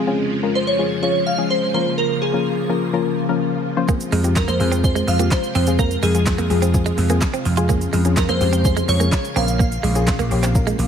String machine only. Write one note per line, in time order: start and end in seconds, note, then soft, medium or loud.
0.00 7.66 F3 medium
0.00 1.70 G#3 medium
0.07 1.72 F2 medium
0.07 3.85 C#3 medium
0.07 10.88 F4 medium
1.74 3.86 A#3 medium
3.89 7.66 C3 medium
3.89 9.32 G#3 medium
7.69 9.34 C#3 medium
7.69 10.88 F3 medium
9.36 10.88 C#3 medium
9.36 10.88 A#3 medium